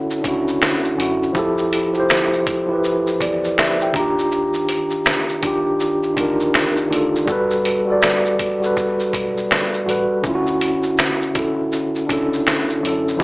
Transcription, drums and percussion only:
0.10 shaker
0.24 kick, closed hi-hat, shaker
0.48 shaker
0.62 finger snap, snare, shaker
0.84 shaker
1.00 closed hi-hat, shaker
1.23 shaker
1.35 kick, shaker
1.58 shaker
1.73 closed hi-hat, shaker
1.94 shaker
2.09 finger snap, snare, shaker
2.33 shaker
2.47 kick, closed hi-hat, shaker
2.84 shaker
3.07 shaker
3.21 kick, closed hi-hat, shaker
3.44 shaker
3.58 finger snap, snare, shaker
3.81 shaker
3.94 kick, closed hi-hat, shaker
4.19 shaker
4.32 shaker
4.54 shaker
4.69 closed hi-hat, shaker
4.90 shaker
5.05 finger snap, snare, shaker
5.29 shaker
5.43 kick, closed hi-hat, shaker
5.80 shaker
6.03 shaker
6.17 kick, closed hi-hat, shaker
6.40 shaker
6.54 finger snap, snare, shaker
6.77 shaker
6.93 closed hi-hat, shaker
7.16 shaker
7.28 kick, shaker
7.50 shaker
7.65 closed hi-hat, shaker
8.02 finger snap, snare, shaker
8.26 shaker
8.39 kick, closed hi-hat, shaker
8.63 shaker
8.77 kick, shaker
9.00 shaker
9.13 kick, closed hi-hat, shaker
9.37 shaker
9.51 finger snap, snare, shaker
9.74 shaker
9.89 closed hi-hat, shaker
10.24 kick, shaker
10.46 shaker
10.61 closed hi-hat, shaker
10.83 shaker
10.98 finger snap, snare, shaker
11.21 shaker
11.35 kick, closed hi-hat, shaker
11.72 shaker
11.95 shaker
12.09 kick, closed hi-hat, shaker
12.33 shaker
12.47 finger snap, snare, shaker
12.70 shaker
12.85 closed hi-hat, shaker
13.08 shaker
13.20 kick

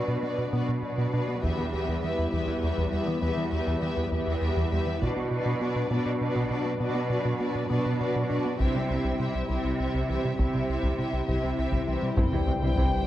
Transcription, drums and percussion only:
1.44 taiko
2.78 taiko
5.02 taiko
6.36 taiko
8.60 taiko
10.38 taiko
10.83 taiko
11.28 taiko
11.72 taiko
12.17 taiko
12.77 taiko

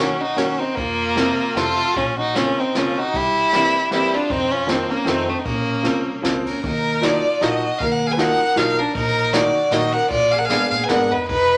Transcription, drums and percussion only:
0.38 snare, ride
0.77 kick, ride
1.17 snare, ride
1.57 snare, ride
1.78 ride
1.96 kick, ride
2.36 snare, ride
2.75 snare, ride
3.14 kick, ride
3.53 snare, ride
3.92 snare, ride
4.14 ride
4.30 kick, ride
4.69 snare, ride
5.07 snare, ride
5.46 kick, ride
5.84 snare, ride
6.24 snare, ride
6.46 ride
6.63 kick, ride
7.03 snare, ride
7.42 snare, ride
7.80 kick, ride
8.19 snare, ride
8.57 snare, ride
8.95 kick, ride
9.33 snare, ride
9.71 snare, ride
10.10 kick, ride
10.49 snare, ride
10.89 snare, ride
11.29 kick, ride

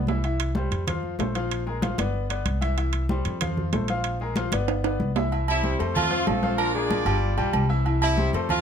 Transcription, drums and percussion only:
0.07 high conga, low timbale
0.23 high conga, high timbale
0.40 high conga, high timbale
0.55 high conga
0.71 high conga, high timbale
0.87 high conga, low conga, high timbale
1.03 high conga
1.19 high conga, high timbale, low timbale
1.35 high conga, high timbale
1.51 high conga, high timbale
1.67 high conga
1.82 high conga, high timbale
1.98 high conga, high timbale
2.14 high conga
2.30 high conga, high timbale
2.46 high conga, high timbale
2.62 high conga, high timbale
2.78 high conga, high timbale
2.93 high conga, high timbale
3.09 high conga
3.25 high conga, high timbale
3.41 high conga, low conga, high timbale
3.57 high conga, low conga
3.73 high conga, high timbale, low timbale
3.88 high conga, high timbale
4.04 high conga, high timbale
4.20 high conga
4.36 high conga, high timbale
4.52 high conga, high timbale
4.68 high conga, high timbale
4.84 high conga, high timbale
5.00 high conga
5.16 low timbale
5.32 high conga, low agogo
5.48 high conga, low agogo
5.64 high conga
5.80 high conga, low agogo
5.96 high conga, low conga, low agogo
6.12 high conga
6.27 high conga, low timbale, low agogo
6.43 high conga
6.58 low agogo
6.75 high conga
6.90 high conga, low agogo
7.06 high conga, low agogo
7.22 high conga
7.38 high conga, low agogo
7.53 high conga, low agogo
7.86 high conga, low agogo
8.02 high conga, low agogo
8.18 high conga
8.33 high conga, low agogo
8.49 high conga, low conga, low agogo

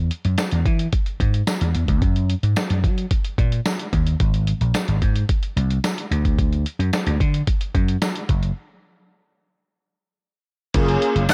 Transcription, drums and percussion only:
0.11 closed hi-hat
0.25 closed hi-hat
0.38 snare, closed hi-hat, tambourine
0.51 closed hi-hat
0.66 kick, closed hi-hat
0.79 closed hi-hat
0.93 kick, closed hi-hat
1.06 closed hi-hat
1.20 kick, closed hi-hat
1.34 closed hi-hat
1.47 snare, closed hi-hat, tambourine
1.61 closed hi-hat
1.75 closed hi-hat
1.88 kick, closed hi-hat
2.02 kick, closed hi-hat
2.16 closed hi-hat
2.30 closed hi-hat
2.43 closed hi-hat
2.56 snare, closed hi-hat, tambourine
2.70 closed hi-hat
2.84 kick, closed hi-hat
2.98 closed hi-hat
3.11 kick, closed hi-hat
3.25 closed hi-hat
3.38 kick, closed hi-hat
3.52 closed hi-hat
3.66 snare, closed hi-hat, tambourine
3.79 closed hi-hat
3.93 kick, closed hi-hat
4.07 closed hi-hat
4.20 kick, closed hi-hat
4.34 closed hi-hat
4.47 closed hi-hat
4.61 closed hi-hat
4.74 snare, closed hi-hat, tambourine
4.88 closed hi-hat
5.02 kick, closed hi-hat
5.16 closed hi-hat
5.29 kick, closed hi-hat
5.43 closed hi-hat
5.57 closed hi-hat
5.71 closed hi-hat
5.84 snare, closed hi-hat, tambourine
5.98 closed hi-hat
6.12 closed hi-hat
6.25 kick, closed hi-hat
6.39 kick, closed hi-hat
6.53 closed hi-hat
6.66 closed hi-hat
6.80 closed hi-hat
6.93 snare, closed hi-hat, tambourine
7.07 closed hi-hat
7.20 kick, closed hi-hat
7.34 closed hi-hat
7.47 kick, closed hi-hat
7.61 closed hi-hat
7.75 kick, closed hi-hat
7.88 closed hi-hat
8.02 snare, closed hi-hat, tambourine
8.16 closed hi-hat
8.29 kick, closed hi-hat
8.43 closed hi-hat
10.74 kick, closed hi-hat, crash
10.88 closed hi-hat
11.02 closed hi-hat
11.16 closed hi-hat
11.29 snare, closed hi-hat, tambourine

